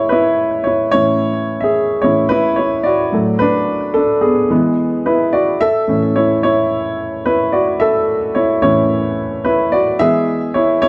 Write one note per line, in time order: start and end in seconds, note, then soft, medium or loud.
0.00 0.93 A2 soft
0.00 0.94 E3 soft
0.00 0.96 G#3 medium
0.00 0.12 E4 medium
0.00 0.96 G#4 medium
0.00 0.64 C#5 loud
0.00 0.96 E5 medium
0.09 0.63 E4 medium
0.09 0.62 B4 medium
0.64 0.73 E4 medium
0.64 0.70 C#5 medium
0.91 1.72 A2 soft
0.91 1.73 E3 soft
0.91 1.73 C#4 medium
0.91 1.59 E4 medium
0.91 1.64 C#5 loud
1.61 2.02 G#4 medium
1.61 2.04 E5 medium
2.02 2.28 A2 soft
2.02 2.29 E3 soft
2.02 2.29 C#4 medium
2.02 2.30 E4 medium
2.02 2.31 C#5 medium
2.29 2.57 E4 medium
2.29 2.59 B4 loud
2.56 2.85 E4 medium
2.56 2.86 C#5 medium
2.83 3.37 F#4 medium
2.83 3.36 D5 medium
3.12 4.46 A2 medium
3.12 4.47 F#3 medium
3.12 4.47 A3 medium
3.39 3.93 D4 medium
3.39 3.97 B4 loud
3.94 4.03 D4 medium
3.94 4.00 A4 medium
4.21 4.50 B3 medium
4.21 5.28 G#4 medium
4.50 5.56 E3 medium
4.50 5.57 G#3 medium
4.50 5.57 B3 medium
5.06 5.32 E4 medium
5.06 5.32 B4 medium
5.33 5.59 F#4 medium
5.33 5.59 D5 medium
5.61 6.12 A4 medium
5.61 6.17 E5 loud
5.88 6.25 A2 medium
5.88 6.25 E3 medium
5.88 6.25 C#4 medium
6.16 6.42 E4 medium
6.16 6.41 C#5 medium
6.43 7.22 E4 medium
6.43 7.28 C#5 medium
7.26 7.52 E4 medium
7.26 7.51 B4 medium
7.52 7.79 F#4 medium
7.52 7.81 D5 medium
7.80 8.32 A4 medium
7.80 8.37 E5 loud
8.35 8.61 E4 medium
8.35 8.61 C#5 medium
8.62 8.99 A2 medium
8.62 8.99 E3 medium
8.62 9.00 C#4 medium
8.62 9.42 E4 medium
8.62 9.47 C#5 medium
9.44 9.52 E4 medium
9.44 9.51 B4 medium
9.72 9.99 F#4 medium
9.72 10.01 D5 medium
9.99 10.78 E3 medium
9.99 10.79 G#3 medium
9.99 10.79 B3 medium
9.99 10.52 G#4 medium
9.99 10.56 E5 loud
10.54 10.81 E4 medium
10.54 10.80 C#5 medium
10.82 10.88 E4 medium
10.82 10.88 C#5 loud